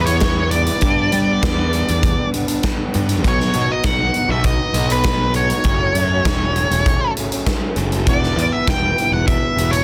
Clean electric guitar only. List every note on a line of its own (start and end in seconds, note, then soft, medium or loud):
0.00 0.21 E3 medium
0.00 0.11 G3 medium
0.08 0.22 G3 medium
0.08 0.24 B3 medium
0.08 0.24 E4 medium
0.22 0.52 E3 medium
0.22 0.53 G3 medium
0.22 0.55 B3 medium
0.22 0.55 E4 medium
0.53 0.81 E3 medium
0.53 0.70 G3 medium
0.53 0.69 B3 medium
0.53 0.66 E4 medium
0.67 0.85 B3 medium
0.67 0.80 E4 medium
0.71 0.83 G3 medium
0.82 1.40 G2 medium
0.82 1.11 D3 medium
0.82 1.12 G3 medium
0.82 1.14 B3 medium
0.82 1.14 D4 medium
1.12 1.42 D3 medium
1.12 1.30 G3 medium
1.12 1.29 B3 medium
1.12 1.26 D4 medium
1.27 1.42 G3 medium
1.27 1.44 B3 medium
1.27 1.44 D4 medium
1.41 1.87 G2 medium
1.41 1.70 D3 medium
1.41 1.59 G3 medium
1.41 1.58 B3 loud
1.41 1.55 D4 medium
1.56 1.72 G3 medium
1.56 1.73 B3 medium
1.56 1.74 D4 medium
1.71 2.17 D3 medium
1.71 1.89 G3 medium
1.71 1.88 B3 medium
1.71 1.86 D4 medium
1.87 2.33 G3 medium
1.87 2.33 B3 medium
1.87 2.34 D4 medium
2.32 2.63 D3 medium
2.32 2.50 G3 medium
2.32 2.48 B3 medium
2.32 2.46 D4 medium
2.48 2.64 G3 soft
2.48 2.65 B3 medium
2.48 2.66 D4 medium
2.64 3.22 G2 medium
2.64 2.91 D3 medium
2.64 2.93 G3 medium
2.64 2.94 B3 medium
2.64 2.95 D4 medium
2.92 3.21 D3 medium
2.92 3.11 G3 medium
2.92 3.09 B3 medium
2.92 3.07 D4 medium
3.08 3.23 B3 medium
3.08 3.22 D4 medium
3.12 3.24 G3 medium
3.23 3.53 B2 medium
3.23 3.54 F#3 medium
3.23 3.55 B3 medium
3.23 3.55 D#4 medium
3.54 3.83 B2 medium
3.54 3.72 F#3 medium
3.54 3.70 B3 medium
3.54 3.68 D#4 medium
3.69 3.85 F#3 medium
3.69 3.85 B3 medium
3.69 3.86 D#4 medium
3.84 4.12 B2 medium
3.84 4.03 F#3 loud
3.84 4.00 B3 medium
3.84 3.98 D#4 medium
3.99 4.15 F#3 soft
3.99 4.15 B3 medium
3.99 4.15 D#4 medium
4.14 4.59 B2 medium
4.14 4.31 F#3 medium
4.14 4.29 B3 medium
4.14 4.28 D#4 medium
4.29 4.75 F#3 medium
4.29 4.77 B3 medium
4.29 4.78 D#4 medium
4.75 5.03 B2 medium
4.75 4.93 F#3 medium
4.75 4.91 B3 medium
4.75 4.89 D#4 medium
4.90 5.04 F#3 medium
4.90 5.06 B3 medium
4.90 5.07 D#4 medium
5.04 5.33 B2 medium
5.04 5.36 B3 medium
5.08 5.36 D#4 loud
5.34 5.63 B2 medium
5.34 5.52 F#3 medium
5.34 5.50 B3 medium
5.34 5.48 D#4 medium
5.49 5.64 B3 medium
5.49 5.63 D#4 medium
5.53 5.65 F#3 medium
5.65 6.25 F#2 medium
5.65 5.94 C#3 medium
5.65 5.96 F#3 medium
5.65 5.97 A3 medium
5.65 5.97 C#4 medium
5.95 6.25 C#3 medium
5.95 6.13 F#3 medium
5.95 6.11 A3 medium
5.95 6.10 C#4 medium
6.11 6.26 F#3 medium
6.11 6.27 A3 medium
6.11 6.27 C#4 medium
6.26 6.71 F#2 medium
6.26 6.43 F#3 loud
6.26 6.42 A3 loud
6.26 6.40 C#4 medium
6.41 6.56 F#3 medium
6.41 6.58 A3 medium
6.41 6.58 C#4 medium
6.56 7.01 C#3 medium
6.56 6.74 F#3 medium
6.56 6.72 A3 medium
6.56 6.71 C#4 medium
6.72 7.17 F#3 medium
6.72 7.18 A3 medium
6.72 7.19 C#4 medium
7.17 7.45 C#3 medium
7.17 7.34 F#3 medium
7.17 7.33 A3 medium
7.17 7.30 C#4 medium
7.32 7.46 F#3 medium
7.32 7.47 A3 medium
7.32 7.48 C#4 medium
7.46 8.04 F#2 medium
7.46 7.75 C#3 medium
7.46 7.76 F#3 medium
7.46 7.78 A3 medium
7.46 7.79 C#4 medium
7.76 8.04 C#3 medium
7.76 7.94 F#3 medium
7.76 7.92 A3 medium
7.80 7.91 C#4 medium
7.92 8.06 F#3 soft
7.92 8.06 A3 medium
7.92 8.05 C#4 medium
8.05 8.35 E3 medium
8.05 8.37 G3 medium
8.05 8.38 B3 medium
8.05 8.38 E4 medium
8.36 8.65 E3 medium
8.36 8.55 G3 medium
8.36 8.53 B3 medium
8.36 8.50 E4 medium
8.51 8.67 G3 medium
8.51 8.68 B3 medium
8.51 8.68 E4 medium
8.66 8.96 E3 medium
8.66 8.86 G3 medium
8.66 8.83 B3 medium
8.66 8.81 E4 medium
8.82 8.98 G3 medium
8.82 8.99 B3 medium
8.82 8.99 E4 medium
8.97 9.42 E3 medium
8.97 9.14 G3 medium
8.97 9.13 B3 medium
8.97 9.10 E4 medium
9.11 9.57 G3 medium
9.11 9.59 B3 medium
9.11 9.60 E4 medium
9.58 9.84 E3 medium
9.58 9.74 G3 medium
9.58 9.73 B3 medium
9.58 9.71 E4 medium
9.72 9.84 G3 medium
9.72 9.84 B3 medium
9.72 9.84 E4 medium